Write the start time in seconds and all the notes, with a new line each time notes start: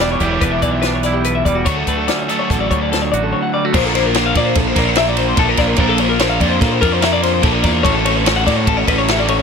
Already playing: E1 E2 D3 E3 G3 B3 E4 G4
0.00 D4 D5
0.12 C#5
0.20 E1 E3 B3 E4 G4 D5, kick, closed hi-hat
0.30 C#5
0.41 E1 D4 B4, kick, closed hi-hat
0.51 E5
0.62 B1 E3 D5, kick, closed hi-hat
0.71 E5
0.82 B4, snare, closed hi-hat
0.86 D4
0.94 C#5
1.03 E4 D5, snare, closed hi-hat
1.13 G4
1.24 E2 B4, closed hi-hat
1.35 E5
1.45 E1 G3 D5, kick, closed hi-hat
1.55 F#4
1.65 D2 D3 F#3 A3 D4 F#4 C#5, kick, closed hi-hat
1.76 A4
1.87 D2 A3 B4, kick, closed hi-hat
1.98 A4
2.08 C#4 D5, snare, closed hi-hat
2.19 C#5
2.29 D3 F#3 A3 D4 F#4 A4 D5, snare, closed hi-hat
2.39 C#5
2.50 A1 A4, kick, snare, closed hi-hat
2.61 D5
2.71 D2 D3 C#5, kick, closed hi-hat
2.82 D5
2.92 A4, snare, closed hi-hat
3.02 C#5
3.12 A1 F#4 D5, closed hi-hat
3.23 A4
3.32 D2 C#5
3.43 F#5
3.54 G3 D5
3.65 A3 F#4
3.74 A#1 A#3 D4 F4 A#4 C5, kick, crash
3.86 A4
3.94 D4 F4 A#4 C5, snare, ride
4.06 A#4
4.14 A#3 D4 F4 A#4 C5, snare, ride
4.26 F5
4.35 A#2 D4 F4 A#4 D5, kick, snare, ride
4.46 C5
4.55 A#1 A4, kick, snare, ride
4.68 C5
4.76 A#1 D4 F4 A#4, kick, snare, ride
4.89 C5
4.95 A#3 D4 F4 A#4 E5, snare, ride
5.08 D5
5.17 C5, snare, ride
5.28 C5
5.37 A#1 A#3 D4 F4 A4 A#4, kick, ride
5.49 A#4
5.57 A#1 D4 F4 A#4 D5, kick, snare, ride
5.67 A#4
5.76 A#1 A#3 D4 F4 C5, kick, ride
5.81 A#4
5.89 A4
5.98 D4 F4 A#4 C5, ride
6.09 A#4
6.19 A#3 D4 F4 A#4 C5, snare, ride
6.29 F5
6.40 F2 D4 F4 A#4 D5, kick, ride
6.49 C5
6.60 A#2 A4, kick, snare, ride
6.71 C5
6.81 F2 D4 F4 A#4, kick, ride
6.92 C5
7.01 A#3 D4 F4 A#4 E5, snare, ride
7.13 D5
7.23 C5, snare, ride
7.34 C5
7.42 A#1 A#3 D4 F4 A4 A#4, kick, snare, ride
7.53 A#4
7.63 E2 D4 F4 A#4 D5, kick, snare, ride
7.73 A#4
7.83 A1 A3 C#4 F#4 A4 C#5, kick, ride
7.94 A4
8.04 C#4 F#4 A4 C#5, ride
8.17 B4
8.25 A3 C#4 F#4 A4 C#5, snare, ride
8.36 F#5
8.45 A2 C#4 F#4 A4 D5, kick, snare, ride
8.56 C#5
8.67 A1 A4, kick, ride
8.77 C#5
8.87 A1 C#4 F#4 A4 B4, kick, ride
8.98 C#5
9.08 A3 C#4 F#4 A4 E5, snare, ride
9.19 D5
9.28 C#5, ride
9.39 C#5